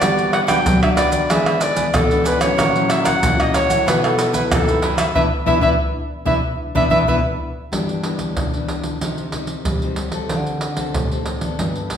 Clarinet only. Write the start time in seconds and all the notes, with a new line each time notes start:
Already playing: D5
0.34 F#5
0.49 G5
0.82 E5
0.98 D5
1.13 D5
1.32 E5
1.63 D5
1.95 A4
2.27 B4
2.42 C#5
2.90 E5
3.06 F#5
3.41 D#5
3.56 C#5
3.88 B4
4.05 A4
4.35 B4
4.54 A4
4.99 E5
5.15 E5
5.47 E5
5.62 E5
6.27 E5
6.76 E5
6.91 E5
7.09 E5